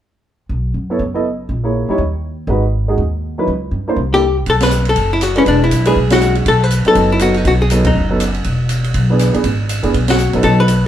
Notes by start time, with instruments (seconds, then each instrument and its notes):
0.49 upright bass B1
0.74 upright bass F#2
0.90 upright piano B3 E4 A4 C#5
0.99 upright bass F#1
1.14 upright piano B3 E4 A4 D#5
1.49 upright bass A#1
1.64 upright piano A#3 E4 G#4 C#5
1.89 upright piano G3 D#4 E4 C#5, muted upright bass stroke
1.98 upright bass D#2
2.47 upright bass G#1, upright piano G#3 D#4 F#4 B4
2.88 upright piano G#3 D#4 F#4 G#4
2.98 upright bass D#2
3.38 upright piano F#3 D#4 E4 B4
3.47 upright bass C#2
3.71 upright bass G2
3.88 upright piano A#3 D4 E4 C5
3.96 upright bass C2
4.12 upright piano A#3 D4 E4 A4, hollow-body jazz guitar G4
4.46 upright bass B1, hollow-body jazz guitar A4, kick, ride
4.60 hollow-body jazz guitar B4, snare, ride
4.70 hi-hat pedal
4.85 ride
4.89 hollow-body jazz guitar A4
4.96 upright bass F#1, kick, ride
5.13 hollow-body jazz guitar E4
5.21 hollow-body jazz guitar F#4, cross-stick, hi-hat pedal, ride
5.36 upright piano G#3 D4 E4 B4, hollow-body jazz guitar C#4, ride
5.46 upright bass E1, hollow-body jazz guitar D4, kick, ride
5.64 hollow-body jazz guitar E4
5.71 upright bass B1, hi-hat pedal, ride
5.85 upright piano G#3 D4 E4 B4, hollow-body jazz guitar G#4, ride
5.96 upright bass B1, kick
6.10 upright piano G#3 D4 E4 F#4, hollow-body jazz guitar F#4, snare, ride
6.21 hi-hat pedal
6.35 ride
6.46 upright bass B1, hollow-body jazz guitar A4, kick, ride
6.64 hollow-body jazz guitar B4
6.70 hi-hat pedal, ride
6.85 upright piano F#3 B3 D#4 A4, hollow-body jazz guitar A4, muted upright bass stroke, ride
6.95 upright bass F#1, kick, ride
7.12 hollow-body jazz guitar E4
7.19 upright piano F#3 B3 D#4 A4, hollow-body jazz guitar F#4, cross-stick, hi-hat pedal, ride
7.34 hollow-body jazz guitar D#4, ride
7.45 upright bass B1, hollow-body jazz guitar F#4, kick, ride
7.62 hollow-body jazz guitar G#4
7.70 upright piano F#3 B3 D#4 A4, hi-hat pedal, ride
7.85 hollow-body jazz guitar D#4, kick, ride
7.95 upright bass F#1
8.10 upright piano F#3 B3 D#4 A4
8.20 cross-stick, hi-hat pedal, ride
8.34 ride
8.44 upright bass E1, kick, ride
8.69 hi-hat pedal, ride
8.84 ride
8.94 upright bass B1, kick, ride
9.10 upright piano E3 B3 D4 G#4
9.19 cross-stick, hi-hat pedal, ride
9.33 upright piano E3 B3 D4 G#4, muted upright bass stroke, ride
9.44 upright bass G#1, kick, ride
9.69 hi-hat pedal, ride
9.83 upright bass F#1, upright piano E3 B3 D4 G#4, ride
9.94 upright bass B1, kick, ride
10.08 hollow-body jazz guitar F#4, snare, ride
10.18 hi-hat pedal
10.33 upright bass A#1, upright piano F#3 B3 D#4 A4, ride
10.43 upright bass B1, hollow-body jazz guitar A4, kick, ride
10.60 hollow-body jazz guitar B4
10.68 hi-hat pedal, ride